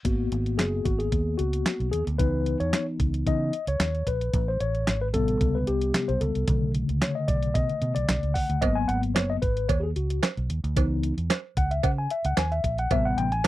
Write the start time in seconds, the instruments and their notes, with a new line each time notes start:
0.05 fingered electric bass G#1, tine electric piano A#3 B3 F#4, kick, closed hi-hat
0.32 fingered electric bass G#1, closed hi-hat
0.46 closed hi-hat
0.58 fingered electric bass F#1, tine electric piano G#4, snare, clap, closed hi-hat
0.85 fingered electric bass G#1, tine electric piano F#4, kick, closed hi-hat
0.98 tine electric piano G#4, closed hi-hat
1.12 fingered electric bass D#2, kick, closed hi-hat
1.38 fingered electric bass C#2, tine electric piano F#4, closed hi-hat
1.53 closed hi-hat
1.66 snare, clap, closed hi-hat
1.80 fingered electric bass B1, closed hi-hat
1.91 fingered electric bass D#2, tine electric piano G#4, closed hi-hat
2.07 fingered electric bass D2, closed hi-hat
2.18 fingered electric bass C#2, tine electric piano E3 B3 D#4 B4, kick, closed hi-hat
2.46 closed hi-hat
2.60 fingered electric bass E2, tine electric piano C#5, closed hi-hat
2.73 snare, clap, closed hi-hat
3.00 fingered electric bass C#2, kick, closed hi-hat
3.14 closed hi-hat
3.26 fingered electric bass C#3, tine electric piano E3 B3 D#4 D#5, kick, closed hi-hat
3.53 closed hi-hat
3.67 fingered electric bass C#2, tine electric piano C#5, closed hi-hat
3.80 fingered electric bass D#2, snare, clap, closed hi-hat
3.95 closed hi-hat
4.07 fingered electric bass A#1, tine electric piano B4, kick, closed hi-hat
4.21 closed hi-hat
4.33 fingered electric bass A1, kick, closed hi-hat
4.48 tine electric piano C5
4.60 fingered electric bass A1, tine electric piano C#5, closed hi-hat
4.75 closed hi-hat
4.87 fingered electric bass G#1, snare, clap, closed hi-hat
5.02 tine electric piano B4
5.13 fingered electric bass A1, tine electric piano C3 G3 B3 A4, kick, closed hi-hat
5.28 closed hi-hat
5.41 fingered electric bass C#2, kick, closed hi-hat
5.55 tine electric piano B4
5.67 fingered electric bass C2, tine electric piano G4, closed hi-hat
5.81 closed hi-hat
5.94 snare, clap, closed hi-hat
6.08 fingered electric bass B1, tine electric piano C5, closed hi-hat
6.21 fingered electric bass C#2, tine electric piano A4, closed hi-hat
6.35 fingered electric bass C2, closed hi-hat
6.47 fingered electric bass B1, tine electric piano C#3 D3 A3, kick, closed hi-hat
6.75 closed hi-hat
6.89 fingered electric bass C#2, closed hi-hat
7.02 tine electric piano C#5, snare, clap, closed hi-hat
7.15 tine electric piano D#5
7.28 fingered electric bass B1, tine electric piano D5, kick, closed hi-hat
7.43 closed hi-hat
7.54 fingered electric bass B2, tine electric piano D#5, kick, closed hi-hat
7.69 closed hi-hat
7.82 fingered electric bass B2, closed hi-hat
7.95 fingered electric bass B1, tine electric piano D5, closed hi-hat
8.09 fingered electric bass B1, snare, clap, closed hi-hat
8.23 fingered electric bass C#2, closed hi-hat
8.34 tine electric piano F#5, kick, open hi-hat
8.49 fingered electric bass D2, closed hi-hat
8.62 fingered electric bass G#1, tine electric piano F#3 A#3 B3 D#5, kick, closed hi-hat, cowbell
8.75 tine electric piano G#5
8.88 fingered electric bass G#1, tine electric piano F#5, closed hi-hat
9.03 closed hi-hat
9.15 fingered electric bass F#1, tine electric piano C#5, snare, clap, closed hi-hat, cowbell
9.30 tine electric piano D#5
9.42 fingered electric bass G#1, tine electric piano B4, kick, closed hi-hat
9.57 closed hi-hat
9.69 fingered electric bass D#2, tine electric piano C#5, kick, closed hi-hat, cowbell
9.80 tine electric piano G4 G#4
9.96 fingered electric bass C#2, tine electric piano F#4, closed hi-hat
10.10 closed hi-hat
10.23 snare, clap, closed hi-hat, cowbell
10.37 fingered electric bass B1, closed hi-hat
10.50 fingered electric bass D#2, closed hi-hat
10.64 fingered electric bass D2, closed hi-hat
10.76 fingered electric bass C#2, tine electric piano E3 B3 D#4, kick, closed hi-hat, cowbell
11.03 closed hi-hat
11.17 fingered electric bass E2, closed hi-hat
11.30 snare, clap, closed hi-hat, cowbell
11.57 fingered electric bass C#2, tine electric piano F#5, kick, closed hi-hat
11.71 tine electric piano E5, closed hi-hat
11.83 fingered electric bass C#3, tine electric piano F#5, kick, closed hi-hat, cowbell
11.98 tine electric piano G#5
12.10 tine electric piano E5, closed hi-hat
12.25 fingered electric bass C#2, tine electric piano F#5, closed hi-hat
12.37 fingered electric bass D#2, tine electric piano G#5, snare, clap, closed hi-hat, cowbell
12.52 tine electric piano E5, closed hi-hat
12.64 fingered electric bass A#1, kick, closed hi-hat
12.78 tine electric piano F#5, closed hi-hat
12.91 fingered electric bass A1, tine electric piano C3 G3 B3 E5, kick, closed hi-hat, cowbell
13.05 tine electric piano F#5
13.18 fingered electric bass A1, tine electric piano G5, closed hi-hat
13.32 tine electric piano G#5, closed hi-hat
13.44 cowbell